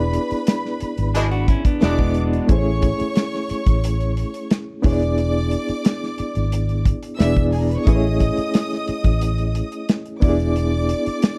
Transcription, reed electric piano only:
Already playing: B3 D4 E4 G#4 D5
1.81 B3 D4 E4 G#4 D5
2.47 A3 C#4 E4 G#4
2.52 C5
2.58 C#5
4.82 B3 D4 E4 G#4 C#5
4.93 D5
7.19 B3 D4 E4 G#4 D5
7.85 A3 C#4 E4 G#4
7.89 B4
7.96 C#5
10.20 B3 D4 E4 G4
10.24 D5
10.30 G#4

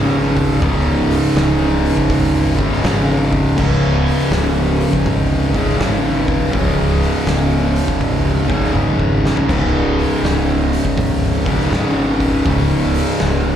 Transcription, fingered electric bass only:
Already playing: G#1
0.62 C#1
1.35 C#1
2.10 G#1
2.84 G#1
3.58 C#1
4.31 C#1
5.06 G#1
5.79 G#1
6.54 C#1
7.27 C#1
8.01 G#1
8.75 G#1
9.49 C#1
10.23 C#1
10.98 G#1
11.72 G#1
12.46 C#1
13.22 C#1

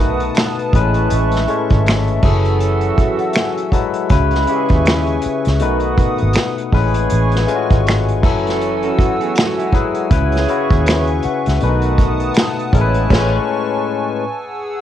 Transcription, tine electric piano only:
Already playing: B2 A3 D#4 B4
0.74 A2 G#3 C#4 B4
1.48 G#3 A3 C#4 C#5
2.23 F#3 E4 G#4 A4
2.98 E5
3.21 F#5
3.36 G#5
3.72 F#3 G#3 E4 B4 A5
4.10 C#3 C#4 E4 B4
4.47 C#3 C#4 E4 G4
4.56 G#4
5.60 B2 A3 D#4 B4
6.72 A2 G#3 C#4 B4
7.47 G#3 A3 C#4 F4
7.55 F#4
8.22 F#3 E4 A4 G#5
9.73 F#3 E4 G#4 B4
10.10 C#3 C#4 E4 B4
10.48 C#3 C#4 E4 F#4
10.87 B5
11.09 G#5
11.25 F#5
11.47 E5
11.61 B2 A3 D4 B4
11.69 D#4
12.72 A2 G#3 C#4 A#4
12.81 B4
13.10 A2 G#3 C#4
13.19 B4

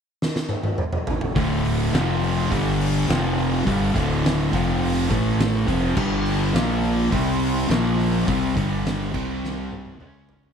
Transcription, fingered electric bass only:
1.36 D1
1.93 F1
2.52 G1
3.09 F1
3.67 G1
3.96 D1
4.53 F1
5.11 A1
5.68 F1
5.97 G1
6.54 A#1
7.12 C2
7.69 A#1
8.28 C2
8.57 G1
9.14 C2
10.00 C#2

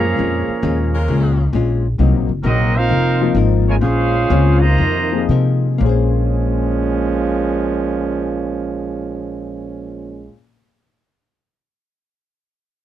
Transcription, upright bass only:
Already playing: F#2
0.19 F2
0.49 muted upright bass stroke
0.63 D#2
1.08 C#2
1.53 A#1
1.99 C2
2.14 A#1
2.29 F#1
2.44 A#1
2.89 F1
3.35 G#1
3.81 A#1
4.30 C#2
4.78 F2
5.29 C3
5.80 A#1

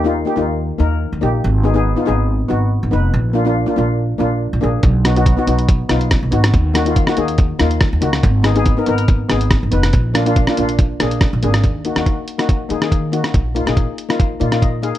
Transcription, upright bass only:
Already playing: D#2
0.37 D#2
0.80 D#2
1.13 D#2
1.23 A#1
1.44 G#1
2.08 G#1
2.51 G#1
2.83 G#1
2.93 F1
3.14 A#1
3.78 A#1
4.20 A#1
4.53 A#1
4.63 A#1
4.83 B1
5.47 B1
5.90 B1
6.23 B1
6.32 G#1
6.54 D#2
7.17 D#2
7.60 D#2
7.93 D#2
8.02 C#2
8.24 G#1
8.88 G#1
9.31 G#1
9.63 G#1
9.73 F1
9.94 A#1
10.58 A#1
11.01 A#1
11.33 A#1
11.43 G#1
11.64 D#2
11.96 D#2
12.70 D#3
13.34 A#1
13.67 A#1
14.41 A#2

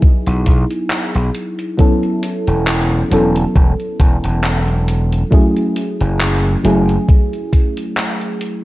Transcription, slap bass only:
0.27 B1
0.47 B1
1.15 B1
2.48 E1
3.12 E1
3.56 E1
4.00 E1
4.24 E1
6.01 F#1
6.64 F#1

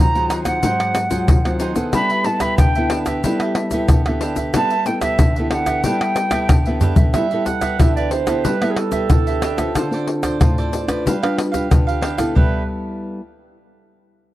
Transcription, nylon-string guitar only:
Already playing: D#3
0.15 F#3 C4 F4
0.45 F#3 C4 F4
0.63 G#2 F#3 C4
1.10 F#3 C4 F4
1.28 D#3
1.46 F#3 C4 F4
1.76 B3 E4 A4
1.95 G3
2.26 B3 E4 A4
2.59 D3
2.78 B3 E4 A4
3.25 G3 B3 E4 A4
3.73 B3 E4 A4
3.90 D3
4.08 B3 E4 A4
4.56 G3 B3 E4 A4
4.88 B3 E4 A4
5.21 D3
5.39 B3 E4 A4
5.86 G3 B3 E4 A4
6.32 B3 E4 A4
6.51 D3
6.67 B3 E4 A4
7.15 G3 B3 E4 A4
7.33 B3 E4 A4
7.79 D3 B3 E4 A4
8.27 B3 E4 A4
8.46 G3
8.62 B3 E4 A4
9.10 D3 B3 E4 A4
9.58 C4 F4 A4
9.74 D3
9.91 C4 F4 A4
10.40 A2 C4 F4 A4
10.88 D4 F4 B4
11.05 G3
11.23 D4 F4 B4
11.71 D3 D4 F4 B4
12.19 B3 E4 A4
12.36 G3 B3 E4 A4

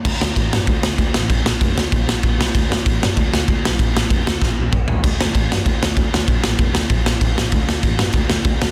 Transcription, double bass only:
0.05 D2
0.21 D2
0.37 A1
0.53 G2
0.68 D2
0.82 D2
0.98 D2
1.15 A1
1.30 A#1
1.44 A#1
1.62 F1
1.75 D2
1.93 A#1
2.06 A#1
2.24 A#1
2.38 C2
2.56 D2
2.70 D2
2.87 A1
3.02 G2
3.17 D2
3.33 D2
3.48 D2
3.66 B1
3.80 A#1
3.96 A#1
4.10 F1
4.26 D2
4.43 A#1
4.60 A#1
4.73 A#1
4.91 A#1
5.04 D2
5.23 D2
5.34 A1
5.51 G2
5.66 D2
5.82 D2
5.97 D2
6.13 D2
6.28 A#1
6.45 A#1
6.58 F1
6.73 D2
6.90 A#1
7.05 A#1
7.22 A#1
7.37 A#1
7.53 D2
7.68 D2
7.84 A1
7.98 G2
8.15 D2
8.29 D2
8.45 D2
8.61 D2

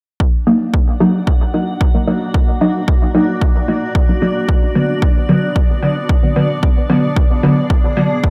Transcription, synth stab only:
0.47 F#3 A#3 D#4
1.00 F#3 A#3 D#4
1.54 F#3 A#3 D#4
1.95 F#3 A#3 D#4
2.08 F#3 A#3 D#4
2.61 F#3 A#3 D#4
3.15 F#3 A#3 D#4
3.68 F#3 A#3 D#4
4.09 F#3 A#3 D#4
4.22 F#3 A#3 D#4
4.75 D3 F#3 B3
5.29 D3 F#3 B3
5.83 D3 F#3 B3
6.23 D3 F#3 B3
6.36 D3 F#3 B3
6.90 D3 F#3 B3
7.43 D3 F#3 B3
7.97 D3 F#3 B3

